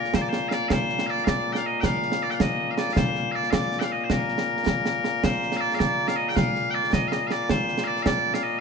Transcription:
Already playing: bagpipes A#2 A#3 A#4
0.04 snare
0.14 bagpipes C5, concert bass drum, snare
0.21 bagpipes D5
0.29 bagpipes C5
0.33 snare
0.48 bagpipes F5, snare
0.53 bagpipes D5
0.68 bagpipes C5 F5, concert bass drum, snare
0.89 snare
0.99 snare
1.06 bagpipes D5 F5
1.18 snare
1.24 bagpipes F5, concert bass drum, snare
1.28 bagpipes D5
1.53 bagpipes F5 G5, snare
1.66 bagpipes D#5
1.80 bagpipes G5, concert bass drum, snare
1.85 bagpipes F5
2.02 snare
2.12 snare
2.23 bagpipes D5
2.30 bagpipes F5 G5, snare
2.40 bagpipes D#5, concert bass drum, snare
2.71 bagpipes D#5 F5
2.78 bagpipes D5, snare
2.93 bagpipes F5, concert bass drum, snare
2.97 bagpipes C5
3.15 snare
3.31 bagpipes D5 F5
3.43 snare
3.50 bagpipes D5 F5, concert bass drum, snare
3.72 snare
3.80 bagpipes F5 G5, snare
3.92 bagpipes D#5
4.04 bagpipes C5
4.10 bagpipes A#4, concert bass drum, snare
4.28 snare
4.38 snare
4.57 snare
4.66 concert bass drum, snare
4.86 snare
5.04 snare
5.24 bagpipes C5, concert bass drum, snare
5.42 snare
5.52 snare
5.57 bagpipes D5 F5
5.71 bagpipes F5, snare
5.79 bagpipes D5, concert bass drum, snare
6.08 bagpipes F5, snare
6.16 bagpipes D#5
6.29 bagpipes G5
6.36 bagpipes F5, concert bass drum, snare
6.55 snare
6.70 bagpipes D5 G5
6.84 snare
6.93 bagpipes D#5, concert bass drum, snare
7.08 bagpipes F5
7.12 bagpipes D#5, snare
7.27 bagpipes F5, snare
7.32 bagpipes D5
7.49 bagpipes C5, concert bass drum, snare
7.68 snare
7.78 snare
7.84 bagpipes D5 F5
7.97 snare
8.03 bagpipes F5, concert bass drum, snare
8.07 bagpipes D5
8.34 bagpipes F5, snare
8.43 bagpipes D#5

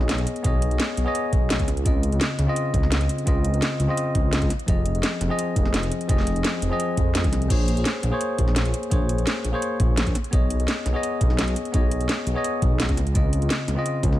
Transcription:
Already playing: detuned saw bass B1, tine electric piano B3 G#4 C#5 D#5
0.01 snare
0.09 snare, closed hi-hat
0.18 detuned saw bass B1, closed hi-hat
0.27 closed hi-hat
0.36 closed hi-hat
0.43 detuned saw bass B1, tine electric piano B3 G#4 C#5 D#5, kick, closed hi-hat
0.62 closed hi-hat
0.71 detuned saw bass B1, closed hi-hat
0.80 snare, closed hi-hat
0.97 detuned saw bass B1, closed hi-hat
1.05 tine electric piano B3 G#4 C#5 D#5
1.15 closed hi-hat
1.33 detuned saw bass B1, kick, closed hi-hat
1.50 snare, closed hi-hat
1.59 detuned saw bass C#2, kick, closed hi-hat
1.68 snare, closed hi-hat
1.77 closed hi-hat
1.84 detuned saw bass C#2, tine electric piano C#3 C4 F4 D#5, kick, closed hi-hat
2.03 closed hi-hat
2.12 detuned saw bass C#2, closed hi-hat
2.21 snare, closed hi-hat
2.38 detuned saw bass C#2, snare, closed hi-hat
2.46 tine electric piano C#3 C4 F4 D#5
2.56 closed hi-hat
2.74 detuned saw bass C#2, kick, closed hi-hat
2.83 snare
2.92 snare, closed hi-hat
3.00 detuned saw bass C#2, closed hi-hat
3.09 closed hi-hat
3.18 closed hi-hat
3.25 detuned saw bass C#2, tine electric piano C#3 C4 F4 D#5, kick, closed hi-hat
3.44 closed hi-hat
3.53 detuned saw bass C#2, closed hi-hat
3.62 snare, closed hi-hat
3.80 detuned saw bass C#2, closed hi-hat
3.87 tine electric piano C#3 C4 F4 D#5
3.97 closed hi-hat
4.15 detuned saw bass C#2, kick, closed hi-hat
4.33 snare, closed hi-hat
4.42 detuned saw bass C#2, kick, closed hi-hat
4.50 snare, closed hi-hat
4.59 closed hi-hat
4.66 detuned saw bass F1, tine electric piano F3 C4 G#4 D#5, kick, closed hi-hat
4.86 closed hi-hat
4.95 detuned saw bass F1, closed hi-hat
5.03 snare, closed hi-hat
5.21 detuned saw bass F1, snare, closed hi-hat
5.28 tine electric piano F3 C4 G#4 D#5
5.39 closed hi-hat
5.56 detuned saw bass F1, kick, closed hi-hat
5.65 snare
5.74 snare, closed hi-hat
5.83 detuned saw bass F1, closed hi-hat
5.92 closed hi-hat
6.01 closed hi-hat
6.07 detuned saw bass F1, tine electric piano F3 C4 G#4 D#5, kick, closed hi-hat
6.18 snare
6.27 closed hi-hat
6.36 detuned saw bass F1, closed hi-hat
6.44 snare, closed hi-hat
6.62 detuned saw bass F1, closed hi-hat
6.69 tine electric piano F3 C4 G#4 D#5
6.80 closed hi-hat
6.97 detuned saw bass F2, kick, closed hi-hat
7.15 snare, closed hi-hat
7.24 detuned saw bass C2, kick, closed hi-hat
7.33 snare, closed hi-hat
7.42 closed hi-hat
7.48 detuned saw bass A#1, tine electric piano A#3 G#4 C5 C#5, kick, closed hi-hat, crash
7.68 closed hi-hat
7.77 detuned saw bass A#1, closed hi-hat
7.85 snare, closed hi-hat
8.03 detuned saw bass A#1, snare, closed hi-hat
8.11 tine electric piano A#3 G#4 C5 C#5
8.21 closed hi-hat
8.38 detuned saw bass A#1, kick, closed hi-hat
8.48 snare
8.56 snare, closed hi-hat
8.65 detuned saw bass A#1, closed hi-hat
8.74 closed hi-hat
8.83 closed hi-hat
8.90 detuned saw bass A#1, tine electric piano A#3 G#4 C5 C#5, kick, closed hi-hat
9.09 closed hi-hat
9.18 detuned saw bass A#1, closed hi-hat
9.27 snare, closed hi-hat
9.44 detuned saw bass A#1, closed hi-hat
9.52 tine electric piano A#3 G#4 C5 C#5
9.62 closed hi-hat
9.80 detuned saw bass A#1, kick, closed hi-hat
9.97 snare, closed hi-hat
10.07 detuned saw bass A#1, kick, closed hi-hat
10.15 snare, closed hi-hat
10.24 closed hi-hat
10.31 detuned saw bass B1, tine electric piano B3 G#4 C#5 D#5, kick, closed hi-hat
10.50 closed hi-hat
10.59 detuned saw bass B1, closed hi-hat
10.68 snare, closed hi-hat
10.86 detuned saw bass B1, snare, closed hi-hat
10.93 tine electric piano B3 G#4 C#5 D#5
11.03 closed hi-hat
11.21 detuned saw bass B1, kick, closed hi-hat
11.30 snare
11.39 snare, closed hi-hat
11.48 detuned saw bass B1, closed hi-hat
11.56 closed hi-hat
11.65 closed hi-hat
11.72 detuned saw bass B1, tine electric piano B3 G#4 C#5 D#5, kick, closed hi-hat
11.91 closed hi-hat
12.01 detuned saw bass B1, closed hi-hat
12.09 snare, closed hi-hat
12.27 detuned saw bass B1, closed hi-hat
12.34 tine electric piano B3 G#4 C#5 D#5
12.44 closed hi-hat
12.62 detuned saw bass B1, kick, closed hi-hat
12.80 snare, closed hi-hat
12.89 detuned saw bass C#2, kick, closed hi-hat
12.97 snare, closed hi-hat
13.07 closed hi-hat
13.13 detuned saw bass C#2, tine electric piano C#3 C4 F4 D#5, kick, closed hi-hat
13.33 closed hi-hat
13.42 detuned saw bass C#2, closed hi-hat
13.50 snare, closed hi-hat
13.68 detuned saw bass C#2, snare, closed hi-hat
13.76 tine electric piano C#3 C4 F4 D#5
13.86 closed hi-hat
14.03 detuned saw bass C#2, kick, closed hi-hat
14.12 snare

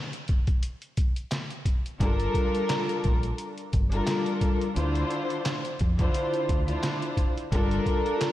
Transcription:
0.13 closed hi-hat
0.28 kick, closed hi-hat
0.47 kick, closed hi-hat
0.63 closed hi-hat
0.82 closed hi-hat
0.97 kick, closed hi-hat
1.16 closed hi-hat
1.31 snare, clap, closed hi-hat
1.50 closed hi-hat
1.65 kick, closed hi-hat
1.86 closed hi-hat
1.99 fingered electric bass G1, string section G3 D4 F4 A4 A#4, kick, closed hi-hat
2.20 closed hi-hat
2.34 kick, closed hi-hat
2.55 closed hi-hat
2.69 snare, clap, closed hi-hat
2.89 closed hi-hat
3.04 fingered electric bass A#1, kick, closed hi-hat
3.23 closed hi-hat
3.38 closed hi-hat
3.58 closed hi-hat
3.73 fingered electric bass G1, kick, closed hi-hat
3.91 string section G3 D4 F4 A4 A#4, closed hi-hat
4.07 snare, clap, closed hi-hat
4.26 closed hi-hat
4.41 kick, closed hi-hat
4.61 closed hi-hat
4.74 fingered electric bass D2, string section D3 D4 E4 F4 C5, closed hi-hat
4.95 closed hi-hat
5.11 closed hi-hat
5.30 closed hi-hat
5.45 snare, clap, closed hi-hat
5.65 closed hi-hat
5.79 fingered electric bass F2, kick, closed hi-hat
5.98 string section D3 D4 E4 F4 C5, kick, closed hi-hat
6.14 closed hi-hat
6.34 closed hi-hat
6.49 fingered electric bass D2, kick, closed hi-hat
6.66 string section D3 D4 E4 F4 C5, closed hi-hat
6.83 snare, clap, closed hi-hat
7.02 closed hi-hat
7.17 kick, closed hi-hat
7.38 closed hi-hat
7.50 fingered electric bass G1, string section G3 D4 F4 A4 A#4, kick, closed hi-hat
7.71 closed hi-hat
7.86 kick, closed hi-hat
8.06 closed hi-hat
8.21 snare, clap, closed hi-hat

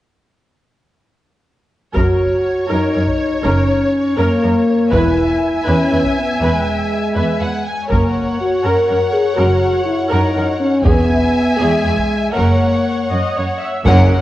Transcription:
1.95 double bass section F#1, cello section F#2, french horn section F#4, viola section A#4, violin section C#5, taiko
2.70 cello section F#2, french horn section D#4, viola section A#4
2.95 cello section F#2, viola section A#4
3.08 taiko
3.44 double bass section F#1, cello section F#2, french horn section C#4, viola section A#4
4.18 cello section F#2, french horn section A#3, viola section A#4
4.43 cello section F#2, viola section A#4
4.93 double bass section E1, cello section E2, french horn section E4, viola section B4, violin section E5 G#5, taiko
5.67 cello section E2, french horn section C#4, viola section B4
5.92 cello section E2, viola section B4
6.04 taiko
6.19 french horn section B3
6.42 double bass section E1, cello section E2, french horn section G#3, viola section B4
7.16 cello section E2, viola section B4, violin section E5
7.41 cello section E2, viola section B4, violin section F#5
7.67 violin section G#5
7.90 double bass section F#1, cello section F#2, french horn section A#3, viola section A#4, violin section C#5 F#5, taiko
8.41 french horn section F#4
8.64 cello section F#2, viola section A#4, french horn section A#4
8.88 cello section F#2, viola section A#4
9.13 french horn section G#4
9.36 double bass section F#1, cello section F#2, french horn section F#4, viola section A#4
9.86 french horn section E4
10.09 cello section F#2, french horn section D#4, viola section A#4
10.36 cello section F#2, viola section A#4
10.60 french horn section C#4
10.84 double bass section E1, cello section E2, french horn section B3, viola section G#4, violin section E5 G#5, taiko
11.57 cello section E2, french horn section G#3, viola section G#4
11.85 cello section E2, viola section G#4
11.97 taiko
12.33 double bass section F#1, cello section F#2, french horn section A#3, viola section A#4, violin section C#5 F#5
13.12 cello section F#2, viola section D#5
13.38 cello section F#2, viola section C#5
13.62 viola section E5
13.86 double bass section F#1, tuba F#1, cello section F#2, viola section F#3 A#3, french horn section C#4, violin section C#4 A#4 F#5, taiko
14.10 french horn section D#4

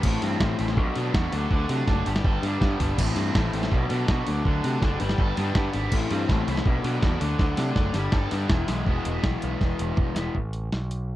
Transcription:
Already playing: overdriven electric guitar A4
0.03 picked electric bass A1, overdriven electric guitar A2 E3 A3 C4 E4, transistor combo organ A4 C5 B5, kick, crash
0.22 picked electric bass G2, overdriven electric guitar C4, open hi-hat
0.40 picked electric bass A1, overdriven electric guitar A2 E3 A3 C4 E4, kick, snare
0.59 picked electric bass A1, overdriven electric guitar E4, open hi-hat
0.68 snare
0.77 picked electric bass B1, overdriven electric guitar B2 F#3 B3 D4, transistor combo organ D5, kick
0.95 picked electric bass B2, overdriven electric guitar F#3 B3 D4, open hi-hat
1.14 picked electric bass E2, overdriven electric guitar B2 F#3 B3 D4 F#4, kick, snare
1.32 picked electric bass D2, overdriven electric guitar F#3 A3 D4, transistor combo organ F#4 A5, open hi-hat
1.36 overdriven electric guitar D3
1.51 picked electric bass D2, overdriven electric guitar D3 F#3 A3, kick
1.55 overdriven electric guitar D4
1.69 picked electric bass C3, overdriven electric guitar D4, open hi-hat
1.87 picked electric bass F#1, overdriven electric guitar D3 F#3 A3 D4, kick, snare
2.06 picked electric bass G1, overdriven electric guitar G2 D3 G3 B3 D4, transistor combo organ G4 B4, open hi-hat
2.16 snare
2.24 picked electric bass G1, overdriven electric guitar A4, kick
2.43 picked electric bass G2, overdriven electric guitar G3 B3 D4, open hi-hat
2.61 picked electric bass G2, overdriven electric guitar D3 G3 B3 D4, kick, snare
2.79 picked electric bass G1, overdriven electric guitar G3 B3 D4, floor tom, open hi-hat
2.97 picked electric bass A1, overdriven electric guitar A2 E3 A3 C4 E4, transistor combo organ A4 C5 B5, kick, splash, crash
3.16 picked electric bass G2, overdriven electric guitar C4, open hi-hat
3.35 picked electric bass A1, overdriven electric guitar A2 E3 A3 C4 E4, kick, snare
3.53 picked electric bass A1, overdriven electric guitar E4, open hi-hat
3.63 snare
3.71 picked electric bass B1, overdriven electric guitar B2 F#3 B3 D4, transistor combo organ D5 B5, kick
3.89 picked electric bass B2, overdriven electric guitar F#3 B3 D4, open hi-hat
4.08 overdriven electric guitar B2 F#3 B3 D4 F#4, picked electric bass B2, kick, snare
4.26 picked electric bass D2, overdriven electric guitar D3 F#3 A3 D4, transistor combo organ F#4 D5 A5, open hi-hat
4.44 picked electric bass D2, overdriven electric guitar D3 F#3 A3 D4, kick
4.64 picked electric bass C3, overdriven electric guitar D4, open hi-hat
4.81 picked electric bass F#1, overdriven electric guitar D3 F#3 A3 D4, kick, snare
5.00 picked electric bass G1, overdriven electric guitar G2 D3 G3 B3 D4, transistor combo organ G4 B4, open hi-hat
5.09 snare
5.18 picked electric bass G1, overdriven electric guitar A4, kick
5.37 picked electric bass G2, overdriven electric guitar G3 B3 D4, snare, open hi-hat
5.55 picked electric bass G2, overdriven electric guitar D3 G3 B3 D4, kick, snare
5.73 picked electric bass G#1, overdriven electric guitar G3 B3 D4, open hi-hat
5.91 picked electric bass A1, overdriven electric guitar A2 E3 A3 C4 E4, transistor combo organ A4 C5 B5, kick, crash
6.11 picked electric bass G2, overdriven electric guitar C4, open hi-hat
6.28 picked electric bass A1, overdriven electric guitar A2 E3 A3 C4 E4, kick, snare
6.47 picked electric bass C2, overdriven electric guitar E4, open hi-hat
6.57 snare
6.65 picked electric bass B1, overdriven electric guitar B2 F#3 B3 D4, transistor combo organ D5 B5, kick
6.84 picked electric bass B2, overdriven electric guitar F#3 B3 D4, open hi-hat
7.01 picked electric bass E2, overdriven electric guitar B2 F#3 B3 D4 F#4, kick, snare
7.21 picked electric bass D2, overdriven electric guitar D3 F#3 A3 D4, transistor combo organ F#4 A5, open hi-hat
7.39 picked electric bass D2, overdriven electric guitar D3 F#3 A3 D4, kick, snare
7.57 picked electric bass C3, overdriven electric guitar D4, snare, open hi-hat
7.75 picked electric bass F#1, overdriven electric guitar D3 F#3 A3 D4, kick, snare
7.93 picked electric bass G1, overdriven electric guitar G2 D3 G3 B3 D4, transistor combo organ G4 B4, snare, open hi-hat
8.12 picked electric bass G1, overdriven electric guitar A4, kick, snare
8.31 picked electric bass G2, overdriven electric guitar G3 B3 D4, snare, open hi-hat
8.49 picked electric bass E1, overdriven electric guitar E2 E3 G#3 B3 E4, transistor combo organ E4 G#5, kick, snare
8.67 picked electric bass B1, overdriven electric guitar G#3 B3 E4, snare, open hi-hat
8.86 picked electric bass E1, overdriven electric guitar E2 B2 E3 G#3 B3 E4 G#4, kick
9.05 picked electric bass E1, closed hi-hat
9.23 picked electric bass B1, kick, snare
9.42 picked electric bass B1, closed hi-hat
9.61 picked electric bass E1, kick, snare
9.79 picked electric bass E1, closed hi-hat
9.97 picked electric bass E1, kick, mid tom
10.15 picked electric bass E1, overdriven electric guitar E3 G#3 B3 E4, snare, closed hi-hat
10.35 picked electric bass A1, kick
10.53 closed hi-hat
10.72 picked electric bass B1, snare
10.91 closed hi-hat

